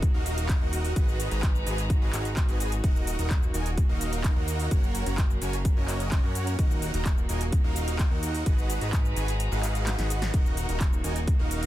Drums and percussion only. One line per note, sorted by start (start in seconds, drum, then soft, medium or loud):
0.02 kick loud
0.02 closed hi-hat medium
0.02 shaker soft
0.26 open hi-hat loud
0.26 shaker medium
0.38 closed hi-hat medium
0.38 shaker soft
0.49 kick loud
0.49 clap loud
0.49 closed hi-hat medium
0.49 shaker soft
0.73 open hi-hat loud
0.73 shaker medium
0.85 open hi-hat medium
0.85 shaker soft
0.96 kick loud
0.96 closed hi-hat medium
0.96 shaker soft
1.09 shaker soft
1.20 open hi-hat loud
1.20 shaker medium
1.31 closed hi-hat soft
1.31 shaker soft
1.43 kick loud
1.43 clap loud
1.43 closed hi-hat medium
1.43 shaker soft
1.55 shaker soft
1.67 open hi-hat loud
1.67 shaker medium
1.78 closed hi-hat medium
1.78 shaker soft
1.90 kick loud
1.90 closed hi-hat medium
1.90 shaker soft
2.13 clap medium
2.13 open hi-hat loud
2.13 shaker medium
2.25 closed hi-hat soft
2.25 shaker soft
2.37 kick loud
2.37 clap loud
2.37 closed hi-hat medium
2.37 shaker soft
2.49 closed hi-hat soft
2.49 shaker soft
2.60 open hi-hat loud
2.60 shaker medium
2.72 closed hi-hat medium
2.72 shaker soft
2.84 kick loud
2.84 closed hi-hat medium
2.84 shaker soft
2.96 shaker soft
3.07 open hi-hat loud
3.07 shaker medium
3.19 closed hi-hat soft
3.19 shaker soft
3.30 kick loud
3.30 clap loud
3.30 closed hi-hat medium
3.30 shaker soft
3.43 shaker soft
3.54 open hi-hat loud
3.54 shaker medium
3.66 closed hi-hat medium
3.66 shaker soft
3.77 kick loud
3.77 closed hi-hat medium
3.77 shaker soft
4.01 open hi-hat loud
4.01 shaker medium
4.13 closed hi-hat medium
4.13 shaker soft
4.24 kick loud
4.24 clap loud
4.24 closed hi-hat medium
4.24 shaker soft
4.48 open hi-hat loud
4.48 shaker medium
4.60 open hi-hat medium
4.60 shaker soft
4.71 kick loud
4.71 closed hi-hat medium
4.71 shaker soft
4.83 shaker soft
4.95 open hi-hat loud
4.95 shaker medium
5.06 closed hi-hat medium
5.06 shaker soft
5.18 kick loud
5.18 clap loud
5.18 closed hi-hat medium
5.18 shaker soft
5.30 shaker soft
5.42 open hi-hat loud
5.42 shaker medium
5.53 closed hi-hat medium
5.53 shaker soft
5.65 kick loud
5.65 closed hi-hat medium
5.65 shaker soft
5.88 clap medium
5.88 open hi-hat loud
5.88 shaker medium
6.00 closed hi-hat medium
6.00 shaker soft
6.12 kick loud
6.12 clap loud
6.12 closed hi-hat medium
6.12 shaker soft
6.35 open hi-hat loud
6.35 shaker medium
6.47 closed hi-hat medium
6.47 shaker soft
6.59 kick loud
6.59 closed hi-hat medium
6.59 shaker soft
6.71 shaker soft
6.82 open hi-hat loud
6.82 shaker medium
6.94 closed hi-hat medium
6.94 shaker soft
7.05 kick loud
7.05 clap loud
7.05 closed hi-hat medium
7.05 shaker soft
7.18 shaker soft
7.29 open hi-hat loud
7.29 shaker medium
7.41 closed hi-hat medium
7.41 shaker soft
7.52 kick loud
7.52 closed hi-hat medium
7.52 shaker soft
7.76 open hi-hat loud
7.76 shaker medium
7.88 closed hi-hat medium
7.88 shaker soft
7.99 kick loud
7.99 clap loud
7.99 closed hi-hat medium
7.99 shaker soft
8.23 open hi-hat loud
8.23 shaker medium
8.34 open hi-hat medium
8.34 shaker soft
8.46 kick loud
8.46 closed hi-hat medium
8.46 shaker soft
8.58 shaker soft
8.70 open hi-hat loud
8.70 shaker medium
8.81 closed hi-hat medium
8.81 shaker soft
8.93 kick loud
8.93 clap loud
8.93 closed hi-hat medium
8.93 shaker soft
9.05 shaker soft
9.16 open hi-hat loud
9.16 shaker medium
9.28 closed hi-hat medium
9.28 shaker soft
9.40 closed hi-hat medium
9.40 shaker soft
9.52 shaker soft
9.63 clap medium
9.63 open hi-hat loud
9.63 shaker medium
9.75 closed hi-hat medium
9.75 shaker soft
9.87 snare medium
9.87 clap loud
9.87 closed hi-hat medium
9.87 shaker soft
9.99 snare medium
9.99 closed hi-hat soft
9.99 shaker soft
10.10 open hi-hat loud
10.10 shaker medium
10.22 snare medium
10.22 closed hi-hat medium
10.22 shaker soft
10.34 kick loud
10.34 closed hi-hat medium
10.34 shaker soft
10.46 shaker soft
10.57 open hi-hat loud
10.57 shaker medium
10.69 closed hi-hat medium
10.69 shaker soft
10.80 kick loud
10.80 clap loud
10.80 closed hi-hat medium
10.80 shaker soft
10.93 shaker soft
11.04 open hi-hat loud
11.04 shaker medium
11.16 closed hi-hat medium
11.16 shaker soft
11.27 kick loud
11.27 closed hi-hat medium
11.27 shaker soft
11.51 open hi-hat loud
11.51 shaker medium
11.63 closed hi-hat medium